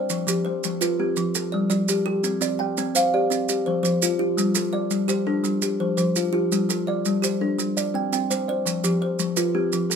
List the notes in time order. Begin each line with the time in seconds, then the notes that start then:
Already playing: C5 D5
0.10 F3, maracas
0.27 F3 G4, maracas
0.45 C5
0.64 F3, maracas
0.81 F4 B4, maracas
1.00 C4 G4
1.16 F3, maracas
1.35 A4, maracas
1.52 G3 D5
1.70 G3 D5, maracas
1.88 G4, maracas
2.06 G4 A4
2.24 C4, maracas
2.41 C4 D5, maracas
2.59 G5
2.77 C4, maracas
2.95 C5 F5, maracas
3.14 G4 D5
3.30 C4, maracas
3.49 G4, maracas
3.66 F3 C5
3.83 F3 C5, maracas
4.02 F4, maracas
4.19 F4 G4
4.37 G3, maracas
4.55 G3 A4, maracas
4.73 D5
4.91 G3, maracas
5.08 G4 C5, maracas
5.27 D4 A4
5.44 G3, maracas
5.62 G4, maracas
5.80 F3 C5
5.97 F3 C5, maracas
6.16 F4, maracas
6.33 F4 G4
6.52 G3, maracas
6.69 G3 A4, maracas
6.87 D5
7.05 G3, maracas
7.22 G4 C5, maracas
7.41 D4 A4
7.58 G3, maracas
7.77 D5, maracas
7.94 C4 G5
8.13 C4 G5, maracas
8.30 C5, maracas
8.48 C5 D5
8.66 F3, maracas
8.84 F3 G4, maracas
9.02 C5
9.19 F3, maracas
9.36 F4 B4, maracas
9.55 C4 G4
9.73 F3, maracas
9.90 A4, maracas